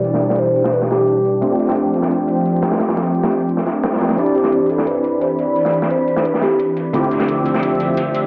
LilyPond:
<<
  \new Staff \with { instrumentName = "Soft synth lead" } { \time 4/4 \key c \major \tempo 4 = 174 d''4 c''4 b'8 g'4.~ | g'8 r2. r8 | r1 | r8 g'4 a'8 b'4 c''8 d''8~ |
d''4 c''4 b'8 g'4.~ | g'8 r2. r8 | }
  \new Staff \with { instrumentName = "Tine electric piano" } { \time 4/4 \key c \major <b, g d' e' g'>1 | <a c' d' f' g'>1~ | <a c' d' f' g'>1 | <c' d' e' g' d''>1~ |
<c' d' e' g' d''>1 | <d a c' e' f' g'>1 | }
  \new Staff \with { instrumentName = "Analog synth pad" } { \time 4/4 \key c \major << { <e g'>1 | <f g'>1~ | <f g'>1 | <e d' b''>1~ |
<e d' b''>1 | <f c' g' e''>1 | } \\ { <g d'>1 | c'1~ | c'1~ | c'1~ |
c'1 | r1 | } >> }
  \new DrumStaff \with { instrumentName = "Drums" } \drummode { \time 4/4 hh16 sn16 hh16 <hh sn>16 hh8 hh16 sn16 hh16 sn16 <hh sn>8 hh8 hh8 | hh8 <hh hho>16 <hh sn>16 hh8 hh16 sn16 hh8 hh8 hh8 <hh sn>16 <hh sn>16 | <hh sn>16 <hh sn>16 <hh sn>16 hh16 hh16 <hh sn>16 hh16 hh16 hh16 sn16 <hh sn>8 <hh sn>16 <hh sn>32 <hh sn>32 <hh sn>16 <hh sn>16 | hh8 <hh hho>16 <hh sn>16 hh8 hh16 sn16 hh8 hh8 hh8 hh8 |
hh16 sn16 hh16 <hh sn>16 hh8 hh16 sn16 hh16 sn16 <hh sn>8 hh8 hh8 | hh8 <hh hho>16 <hh sn>16 hh8 hh16 sn16 hh8 hh8 hh8 hh8 | }
>>